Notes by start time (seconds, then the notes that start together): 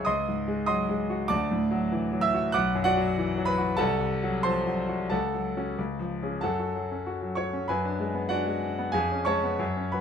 0.05 C#2 D#5 C6 D#6
0.28 G#2
0.48 G#3
0.66 F#3 D#5 C6 D#6
0.89 G#3
1.10 F#4
1.28 D2 D5 A5 D6
1.51 A2
1.71 F#3
1.92 E3
2.12 F#3
2.21 E5 E6
2.34 F#4
2.52 B1 F#5 D6 F#6
2.75 F#2
2.84 F#4 D5 F#5
2.97 F#3
3.17 E3
3.38 F#3
3.45 B4 B5
3.58 F#4
3.77 C2 A4 F#5 A5
4.01 C3
4.23 F#3
4.43 F3 C5 A5 C6
4.67 F#3
4.89 F#4
5.10 C#2 A4 F#5 A5
5.34 F#3
5.57 C#4 F#4
5.78 C#2
5.99 F3
6.23 C#4 G#4
6.41 F#2 A4 F#5 A5
6.60 F#4
6.75 F#3
6.92 C#4
7.07 F#4
7.22 F#3
7.35 F#4 C#5 C#6
7.53 C#4
7.68 F#2 B4 G#5 B5
7.85 D4
8.00 G#3
8.14 B3
8.29 D4 F#4 D5 F#5
8.47 G#3
8.62 D4
8.79 B3
8.92 F2 G#4 F5 G#5
9.12 C#4
9.25 G#3 C#5 A5 C#6
9.44 B3
9.59 F#2
9.77 C#4
9.92 F#3 B4 B5